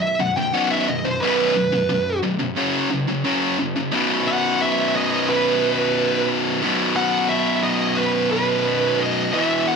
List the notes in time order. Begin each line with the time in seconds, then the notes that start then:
Already playing: B1 F#2
0.03 E5
0.19 B1 F#2 F#5
0.37 B1 F#2 G5
0.53 B1 F#2 B2 F#5
0.71 E5
0.88 B1 F#2 D#5
1.05 B1 F#2 C5
1.21 B1 F#2 B2 B4
1.56 B1 F#2
1.72 B1 F#2
1.89 B1 F#2
2.23 B1 F#2
2.40 B1 F#2
2.57 F#2 C#3 F#3
2.91 F#2 C#3
3.08 F#2 C#3
3.25 F#2 C#3 F#3
3.59 F#2 C#3
3.76 F#2 C#3
3.92 B1 F#2 B2
4.28 F#5
4.61 E5
4.96 D#5
5.29 B4
6.62 B1 F#2 B2
6.96 F#5
7.29 E5
7.63 D#5
7.97 B4
8.32 B4
9.00 D#5
9.33 E2 B2 E3 E5
9.68 F#5